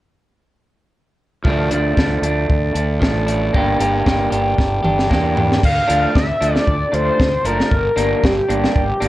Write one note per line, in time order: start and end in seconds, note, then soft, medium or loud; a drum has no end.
1.44 1.68 D2 medium
1.44 1.72 F3 medium
1.44 1.71 A3 medium
1.44 1.70 D4 medium
1.44 kick medium
1.70 1.94 D2 medium
1.70 1.95 F3 medium
1.70 1.97 A3 medium
1.70 1.98 D4 medium
1.70 closed hi-hat medium
1.96 2.20 D2 medium
1.96 2.49 F3 medium
1.96 2.24 A3 medium
1.96 2.22 D4 medium
1.96 kick medium
1.96 snare medium
2.22 2.46 D2 medium
2.22 2.76 A3 soft
2.22 2.74 D4 medium
2.22 closed hi-hat medium
2.49 2.73 D2 medium
2.49 kick medium
2.74 2.99 D2 medium
2.74 3.00 A3 medium
2.74 3.02 D4 medium
2.74 closed hi-hat medium
3.00 3.48 A1 medium
3.00 3.52 F3 medium
3.00 3.28 A3 medium
3.00 3.26 D4 medium
3.00 kick medium
3.00 snare medium
3.26 3.53 A3 medium
3.26 3.54 D4 medium
3.26 closed hi-hat medium
3.53 3.77 G1 medium
3.53 3.80 A#3 medium
3.53 3.79 D4 medium
3.53 3.78 G4 medium
3.53 kick medium
3.79 4.03 G1 medium
3.79 4.03 A#3 medium
3.79 4.05 D4 medium
3.79 4.06 G4 medium
3.79 closed hi-hat medium
4.05 4.30 G1 medium
4.05 4.58 A#3 medium
4.05 4.31 D4 medium
4.05 4.29 G4 medium
4.05 kick medium
4.05 snare medium
4.30 4.55 G1 medium
4.30 4.84 D4 medium
4.30 4.82 G4 medium
4.30 closed hi-hat medium
4.58 4.82 G1 medium
4.58 kick medium
4.58 snare soft
4.83 5.08 G1 medium
4.83 5.10 D4 medium
4.83 5.11 G4 medium
4.83 mid tom medium
4.99 snare medium
5.10 5.57 E2 medium
5.10 5.61 A#3 medium
5.10 5.37 D4 medium
5.10 5.34 G4 medium
5.10 kick medium
5.10 snare medium
5.36 5.62 D4 medium
5.36 5.61 G4 medium
5.36 floor tom medium
5.52 snare medium
5.63 5.79 D2 medium
5.63 6.13 F5 loud
5.63 kick loud
5.63 crash medium
5.87 6.05 D2 medium
5.87 6.23 F3 medium
5.87 6.23 A3 medium
5.87 6.22 D4 medium
5.87 closed hi-hat medium
6.15 6.31 D2 medium
6.15 6.55 E5 loud
6.15 kick loud
6.15 snare loud
6.41 6.57 D2 medium
6.41 6.75 F3 medium
6.41 6.75 A3 medium
6.41 6.75 D4 medium
6.41 closed hi-hat medium
6.55 6.66 D5 loud
6.55 snare medium
6.66 6.83 D2 medium
6.66 6.95 D5 medium
6.66 kick medium
6.92 7.09 D2 medium
6.92 7.27 F3 medium
6.92 7.27 A3 medium
6.92 7.27 D4 medium
6.92 7.47 C5 loud
6.92 closed hi-hat medium
7.19 7.35 D2 medium
7.19 kick loud
7.19 snare loud
7.44 7.60 F#1 medium
7.44 7.72 F3 medium
7.44 7.72 A3 medium
7.44 7.71 D4 medium
7.44 8.26 A#4 medium
7.44 closed hi-hat medium
7.60 snare medium
7.71 7.87 G1 medium
7.71 kick loud
7.96 8.13 G1 medium
7.96 8.32 G3 medium
7.96 8.31 A#3 medium
7.96 8.31 D4 medium
7.96 closed hi-hat medium
8.23 8.39 G1 medium
8.23 8.74 G4 medium
8.23 kick loud
8.23 snare loud
8.48 8.65 G1 medium
8.48 8.84 G3 medium
8.48 8.83 A#3 medium
8.48 8.83 D4 medium
8.48 closed hi-hat medium
8.64 snare medium
8.75 8.91 G1 medium
8.75 9.08 G4 medium
8.75 kick loud
9.00 9.08 G1 medium
9.00 9.08 G3 medium
9.00 9.08 A#3 medium
9.00 9.08 D4 medium
9.00 closed hi-hat medium